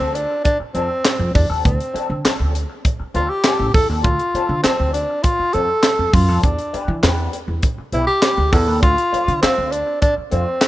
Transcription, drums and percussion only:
0.15 closed hi-hat medium
0.45 kick medium
0.45 closed hi-hat medium
0.75 closed hi-hat medium
1.05 snare loud
1.05 clap loud
1.05 closed hi-hat medium
1.35 kick loud
1.35 open hi-hat medium
1.65 kick medium
1.65 closed hi-hat medium
1.80 closed hi-hat medium
1.96 closed hi-hat medium
2.25 snare loud
2.25 clap medium
2.25 closed hi-hat medium
2.55 closed hi-hat medium
2.85 kick medium
2.85 closed hi-hat medium
3.15 closed hi-hat medium
3.44 snare loud
3.44 clap loud
3.44 closed hi-hat loud
3.74 kick loud
3.74 open hi-hat medium
4.04 kick loud
4.04 closed hi-hat medium
4.19 closed hi-hat medium
4.35 closed hi-hat medium
4.64 snare loud
4.64 clap medium
4.64 closed hi-hat medium
4.94 closed hi-hat medium
5.24 kick medium
5.24 closed hi-hat medium
5.53 closed hi-hat medium
5.83 snare loud
5.83 clap medium
5.83 closed hi-hat medium
6.13 kick loud
6.13 open hi-hat medium
6.43 kick loud
6.43 closed hi-hat medium
6.59 closed hi-hat medium
6.74 closed hi-hat medium
7.03 snare loud
7.03 clap medium
7.03 closed hi-hat medium
7.33 closed hi-hat medium
7.63 kick medium
7.63 closed hi-hat medium
7.92 closed hi-hat medium
8.22 snare loud
8.22 clap medium
8.22 closed hi-hat medium
8.53 kick loud
8.53 open hi-hat medium
8.83 kick loud
8.83 closed hi-hat medium
8.98 closed hi-hat medium
9.14 closed hi-hat medium
9.28 closed hi-hat medium
9.43 snare loud
9.43 clap medium
9.43 closed hi-hat medium
9.72 closed hi-hat medium
10.02 kick medium
10.02 closed hi-hat medium
10.32 closed hi-hat medium
10.61 snare loud
10.61 clap loud
10.61 closed hi-hat medium

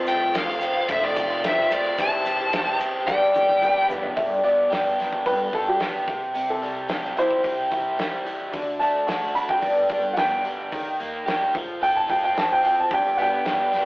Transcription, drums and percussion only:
0.06 ride medium
0.06 shaker medium
0.34 snare loud
0.34 ride loud
0.34 shaker medium
0.61 ride medium
0.61 shaker loud
0.89 kick loud
0.89 ride loud
0.89 shaker medium
1.16 kick medium
1.16 ride medium
1.16 shaker medium
1.30 shaker soft
1.44 snare loud
1.44 ride loud
1.44 shaker medium
1.71 ride medium
1.71 shaker medium
1.98 kick loud
1.98 ride loud
1.98 shaker medium
2.26 ride medium
2.26 shaker medium
2.39 shaker soft
2.53 snare loud
2.53 ride medium
2.53 shaker medium
2.80 ride medium
2.80 shaker loud
3.08 kick loud
3.08 snare medium
3.08 shaker medium
3.35 high tom medium
3.35 shaker medium
3.49 high tom medium
3.62 mid tom medium
3.62 shaker medium
3.90 floor tom medium
3.90 shaker medium
4.03 floor tom medium
4.17 kick loud
4.17 open hi-hat medium
4.44 open hi-hat soft
4.72 snare loud
4.72 open hi-hat medium
5.00 snare soft
5.00 open hi-hat soft
5.13 kick medium
5.26 kick medium
5.26 open hi-hat medium
5.53 kick medium
5.53 open hi-hat medium
5.80 snare loud
5.80 open hi-hat medium
6.08 kick medium
6.08 open hi-hat soft
6.35 open hi-hat medium
6.63 open hi-hat soft
6.89 snare loud
6.89 open hi-hat medium
7.05 snare soft
7.17 open hi-hat soft
7.31 kick medium
7.44 kick medium
7.44 open hi-hat medium
7.72 kick medium
7.72 open hi-hat soft
7.99 snare loud
7.99 open hi-hat medium
8.26 open hi-hat medium
8.54 kick loud
8.54 open hi-hat medium
8.81 open hi-hat soft
9.08 snare loud
9.08 open hi-hat medium
9.35 open hi-hat medium
9.49 kick medium
9.62 kick medium
9.62 open hi-hat medium
9.89 kick medium
9.89 open hi-hat medium
10.17 snare loud
10.17 open hi-hat medium
10.45 open hi-hat medium
10.72 kick loud
10.72 open hi-hat medium
11.00 open hi-hat medium
11.28 snare loud
11.28 open hi-hat medium
11.55 kick loud
11.55 open hi-hat soft
11.83 open hi-hat medium
12.10 kick medium
12.10 open hi-hat medium
12.37 snare loud
12.37 open hi-hat medium
12.65 open hi-hat soft
12.91 kick loud
12.91 open hi-hat medium
13.18 open hi-hat soft
13.45 snare loud
13.45 open hi-hat medium
13.73 snare soft
13.73 open hi-hat medium

